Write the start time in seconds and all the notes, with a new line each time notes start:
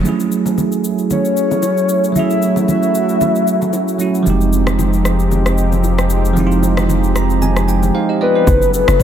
0.01 F#3 A3 C#4 E4 G#4, low conga, shaker
0.07 E4 G#4
0.20 shaker
0.32 shaker
0.46 low bongo, shaker
0.58 high bongo, low conga, shaker
0.72 shaker
0.84 shaker
0.98 shaker
1.10 C#5, low bongo, low conga, shaker
1.25 shaker
1.37 shaker
1.51 low bongo, shaker
1.62 high bongo, shaker
1.77 shaker
1.89 shaker
2.04 shaker
2.12 F#3 A3 C#4 F#4, low conga, shaker
2.17 E4 G#4 E5
2.30 shaker
2.42 shaker
2.56 low bongo, shaker
2.68 E5, high bongo, low conga, shaker
2.83 shaker
2.95 shaker
3.09 shaker
3.21 low bongo, low conga, shaker
3.35 shaker
3.47 shaker
3.62 low bongo, shaker
3.73 high bongo, shaker
3.88 shaker
3.98 F#3 A3 C#4 E4 F#4, shaker
4.15 shaker
4.23 F1 F3 G#3 C4 D#4 G4, low conga, shaker
4.28 D#4 G4
4.41 shaker
4.53 shaker
4.67 cross-stick, low bongo, shaker
4.79 high bongo, low conga, shaker
4.93 shaker
5.05 cross-stick, shaker
5.19 shaker
5.31 low bongo, low conga, shaker
5.46 cross-stick, shaker
5.58 shaker
5.72 low bongo, shaker
5.83 high bongo, shaker
5.98 cross-stick, shaker
6.10 shaker
6.25 shaker
6.33 F3 G#3 C4, low conga, shaker
6.39 D#4 E4
6.47 F4
6.51 shaker
6.63 low bongo, shaker
6.77 cross-stick, low bongo, shaker
6.89 high bongo, low conga, shaker
7.04 shaker
7.16 A#5, cross-stick, shaker
7.30 shaker
7.42 G#5, low bongo, low conga, shaker
7.56 cross-stick, shaker
7.68 G5, shaker
7.83 low bongo, shaker
7.95 D#4 C5 F5
8.09 G4 D#5
8.21 F4 B4 D5 D#5
8.36 D#4 C5
8.47 F#1 F#3 C#4 E4 G#4 A4, kick, shaker
8.62 shaker
8.74 B4, shaker
8.88 F#1, cross-stick, shaker
9.00 kick